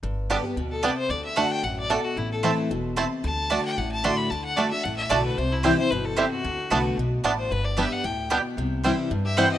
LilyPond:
<<
  \new Staff \with { instrumentName = "Fiddle" } { \time 4/4 \key g \major \tempo 4 = 225 r2 r8 a'8 b'8 c''8 | d''8 e''8 fis''8 g''8 fis''8 d''8 a'8 fis'8 | e'8 a'8 r2. | a''4. g''8 fis''8 a''8 c'''8 b''8 |
a''8 fis''8 d''8 e''8 fis''8 e''8 d''8 b'8 | c''8 e'8 g'8 c''8 b'8 a'8 g'8 fis'8~ | fis'2 r4. c''8 | b'8 d''8 e''8 fis''8 g''4 r4 |
r2 r8 e''8 fis''8 ees''8 | }
  \new Staff \with { instrumentName = "Mandolin" } { \time 4/4 \key g \major r4 <b g' d'' a''>8 r4. <b g' d'' a''>8 r8 | r4 <a fis' d'' a''>8 r4. <a fis' d'' a''>8 r8 | r4 <c' e' c'' a''>8 r4. <c' e' c'' a''>8 r8 | r4 <a fis' d'' a''>8 r4. <a fis' d'' a''>8 r8 |
r4 <a fis' d'' a''>8 r4. <a fis' d'' a''>8 r8 | r4 <c' e' c'' g''>8 r4. <c' e' c'' g''>8 r8 | r4 <b fis' d'' a''>8 r4. <b fis' d'' a''>8 r8 | r4 <b g' d'' g''>8 r4. <b g' d'' g''>8 r8 |
r4 <c' e' c'' g''>8 r4. <c' e' c'' g''>8 r8 | }
  \new Staff \with { instrumentName = "Resonator guitar played with a steel bar" } { \time 4/4 \key g \major r1 | r1 | r1 | r1 |
r1 | r1 | r1 | r1 |
r2 r8 g'8 c''8 fis'8 | }
  \new Staff \with { instrumentName = "Five-string banjo" } { \time 4/4 \key g \major r4 <g b d'>8 r4. <g b d'>8 r8 | r4 <a d'>8 r4. <a d'>8 r8 | r4 <a c' e'>8 r4. <a c' e'>8 r8 | r4 <a d'>8 r4. <a d'>8 r8 |
r4 <a d'>8 r4. <a d'>8 r8 | r4 <g c' e'>8 r4. <g c' e'>8 r8 | r4 <a b d'>8 r4. <a b d'>8 r8 | r4 <g b d'>8 r4. <g b d'>8 r8 |
r4 <g c' e'>8 r4. <g c' e'>8 r8 | }
  \new Staff \with { instrumentName = "Steel-string acoustic guitar" } { \clef bass \time 4/4 \key g \major << { r4 <d g b g'>8 <b g'>8 r2 | r4 <d a d' fis'>4 r2 | r4 <e a c' e'>4 r2 | r4 <d a d' fis'>4 r4 <d a d' fis'>4 |
r4 <d a d' fis'>8 <d' fis'>8 r4 <d a d' fis'>4 | r4 <e g c' e'>8 <c' e'>8 r2 | r4 <d a b fis'>4 r2 | r4 <g b d' g'>4 r2 |
r4 <e g c' e'>4 r4 <e g c' e'>4 | } \\ { g,2 b,4 c4 | d2 fis,4 b,4 | a,2 b,4 c4 | d2 a,2 |
d2 a,2 | c2 b,4 c4 | d2 b,4 a,4 | g,2 a,4 b,4 |
c2 g,2 | } >> }
  \new Staff \with { instrumentName = "Upright bass" } { \clef bass \time 4/4 \key g \major g,,2 d,2 | d,2 a,,2 | a,,2 e,,2 | d,2 a,,2 |
d,2 a,,4 b,,4 | c,2 g,,2 | d,4 c,4 b,,4 a,,4 | g,,2 d,2 |
c,2 g,2 | }
>>